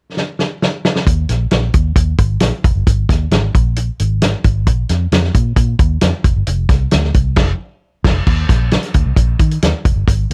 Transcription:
0.17 snare
0.39 snare
0.62 snare
0.85 snare
0.96 snare
1.07 fingered electric bass D#2, kick, closed hi-hat
1.29 fingered electric bass A#1, snare, closed hi-hat
1.51 fingered electric bass A#1, snare, closed hi-hat
1.74 fingered electric bass D#2, kick, closed hi-hat
1.96 fingered electric bass D#2, kick, closed hi-hat
2.18 fingered electric bass G#1, kick, closed hi-hat
2.40 fingered electric bass A#1, snare, closed hi-hat
2.64 fingered electric bass F1, kick, closed hi-hat
2.76 fingered electric bass G1
2.87 fingered electric bass G#1, kick, closed hi-hat
3.09 fingered electric bass D#2, kick, snare, closed hi-hat
3.31 fingered electric bass G#1, snare, closed hi-hat
3.55 fingered electric bass A#1, kick, closed hi-hat
3.76 closed hi-hat
3.99 fingered electric bass G#1, closed hi-hat
4.22 snare, closed hi-hat
4.44 fingered electric bass G#1, kick, closed hi-hat
4.67 fingered electric bass A#1, kick, closed hi-hat
4.89 fingered electric bass F2, snare, closed hi-hat
5.12 fingered electric bass F2, snare, closed hi-hat
5.24 snare
5.34 fingered electric bass A#2, kick, closed hi-hat
5.56 fingered electric bass A#2, kick, closed hi-hat
5.79 fingered electric bass D#2, kick, closed hi-hat
6.01 fingered electric bass F2, snare, closed hi-hat
6.24 fingered electric bass F1, kick, closed hi-hat
6.36 fingered electric bass G1
6.47 fingered electric bass F1, closed hi-hat
6.69 fingered electric bass C2, kick, snare, closed hi-hat
6.91 fingered electric bass D2, snare, closed hi-hat
7.04 snare
7.14 fingered electric bass C2, kick, closed hi-hat
7.36 fingered electric bass F1, kick, snare, crash
8.04 fingered electric bass F1, kick, snare, crash
8.27 fingered electric bass D#2, kick, crash
8.49 fingered electric bass A#1, kick, snare, closed hi-hat
8.71 snare, closed hi-hat
8.83 snare, closed hi-hat
8.94 fingered electric bass D2, kick, closed hi-hat
9.06 fingered electric bass C2
9.16 fingered electric bass A#1, kick, closed hi-hat
9.39 fingered electric bass D#3, kick, closed hi-hat
9.51 closed hi-hat
9.62 fingered electric bass D#2, snare, closed hi-hat
9.85 fingered electric bass F1, kick, closed hi-hat
9.96 fingered electric bass G1
10.08 fingered electric bass G#1, kick, closed hi-hat

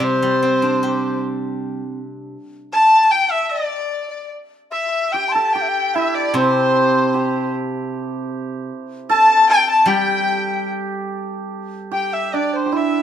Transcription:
Already playing: guzheng G3, hammered dulcimer C4 D4 E4 G4
0.00 guzheng C3, dizi C5, erhu C5
0.22 guzheng G3
0.42 guzheng C4
0.62 guzheng D4
0.83 guzheng G4
2.72 erhu A5, dizi A5
3.10 erhu G5, dizi G5
3.31 erhu E5, dizi E5
3.49 erhu D5, dizi D5
4.10 dizi D5
4.71 dizi E5, erhu E5
5.12 hammered dulcimer G4, dizi G5, erhu G5
5.29 erhu A5, dizi C6
5.34 hammered dulcimer A4, dizi A5
5.53 hammered dulcimer G4, erhu G5, dizi G5
5.62 dizi E5
5.69 dizi G5
5.95 hammered dulcimer E4, dizi E5, erhu E5
6.14 erhu D5, dizi D5
6.34 guzheng C3, hammered dulcimer C4, erhu C5, dizi C5
7.14 hammered dulcimer G4
9.09 hammered dulcimer A4, dizi A5, erhu A5
9.49 erhu G5
9.69 dizi A5, erhu A5
9.86 guzheng G3, hammered dulcimer G4, erhu G5
9.90 dizi G5
11.91 hammered dulcimer G4, dizi G5, erhu G5
12.13 erhu E5, dizi E5
12.32 hammered dulcimer D4, dizi D5, erhu D5
12.53 dizi C5, erhu C5
12.66 hammered dulcimer G4
12.72 hammered dulcimer E4, dizi E5, erhu E5

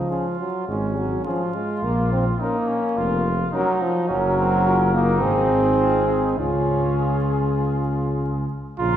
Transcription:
Already playing: trombone F3, trumpet D#4
0.11 french horn C#4, trumpet F4, cornet G#4
0.39 trombone F#3
0.68 tuba G#1, trombone G#3, trumpet C#4
0.98 trombone F#3
1.25 trombone F3, french horn C#4, trumpet F4, cornet G#4
1.54 trombone G#3
1.83 tuba A#1, trombone A#3
2.12 trombone C4
2.40 trombone A#3, french horn C#4, trumpet D#4, cornet A#4
2.68 trumpet C#4
2.97 tuba F1, trumpet F4
3.52 trombone F#3, french horn C#4, trumpet D#4, cornet A#4
3.81 trombone F3
4.08 tuba F#1, trombone F#3, trumpet C#4, french horn F#4, cornet A#4
4.38 trumpet C4
4.65 trumpet C#4, french horn F4
4.94 trombone A#3, trumpet D#4
5.21 tuba G#1, trombone C4, french horn D#4, cornet G#4
5.79 trumpet F4
6.08 trumpet D#4
6.38 tuba C#2, trombone C#4, trumpet F4, french horn F4, cornet G#4
8.79 tuba A#1, trombone C#3, trumpet F4, french horn F4, cornet A#5

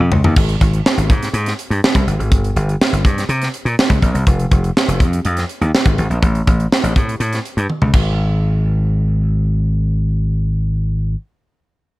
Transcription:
0.00 slap bass F2
0.12 slap bass C#2, floor tom
0.24 slap bass D#2, floor tom
0.36 slap bass G#1, kick, crash
0.49 closed hi-hat
0.61 slap bass G#1, kick, closed hi-hat
0.73 closed hi-hat
0.86 snare
0.97 slap bass G#1, closed hi-hat
1.10 slap bass G#2, kick, closed hi-hat
1.23 snare, closed hi-hat
1.33 slap bass G#2, closed hi-hat
1.46 snare, closed hi-hat
1.59 closed hi-hat
1.70 slap bass G2, closed hi-hat
1.84 snare
1.95 slap bass C2, kick, closed hi-hat
2.07 slap bass G1, closed hi-hat
2.19 slap bass G#1, closed hi-hat
2.32 slap bass G1, kick, closed hi-hat
2.44 closed hi-hat
2.56 slap bass G1, closed hi-hat
2.69 closed hi-hat
2.81 snare
2.93 slap bass G1, closed hi-hat
3.05 slap bass G2, kick, closed hi-hat
3.18 snare, closed hi-hat
3.29 slap bass C3, closed hi-hat
3.42 snare, closed hi-hat
3.54 closed hi-hat
3.65 slap bass A#2, closed hi-hat
3.79 snare
3.90 slap bass C#2, kick, closed hi-hat
4.02 slap bass A#1, kick, closed hi-hat
4.14 slap bass C2, closed hi-hat
4.27 slap bass F1, kick, closed hi-hat
4.39 closed hi-hat
4.51 slap bass F1, kick, closed hi-hat
4.64 closed hi-hat
4.77 snare
4.88 slap bass F1, closed hi-hat
5.00 slap bass F2, kick, closed hi-hat
5.13 closed hi-hat
5.25 slap bass F2, closed hi-hat
5.37 snare, closed hi-hat
5.49 closed hi-hat
5.61 slap bass D#2, closed hi-hat
5.75 snare
5.86 slap bass G#1, kick, closed hi-hat
5.98 slap bass G#1, closed hi-hat
6.10 slap bass A#1, closed hi-hat
6.22 slap bass A1, kick, closed hi-hat
6.35 closed hi-hat
6.47 slap bass A1, kick, closed hi-hat
6.60 closed hi-hat
6.72 snare
6.83 slap bass A1, closed hi-hat
6.96 slap bass A2, kick, closed hi-hat
7.09 closed hi-hat
7.20 slap bass A2, closed hi-hat
7.33 snare, closed hi-hat
7.45 closed hi-hat
7.57 slap bass G2, closed hi-hat
7.70 high tom
7.82 slap bass C#2, mid tom
7.94 slap bass G#1, kick, crash

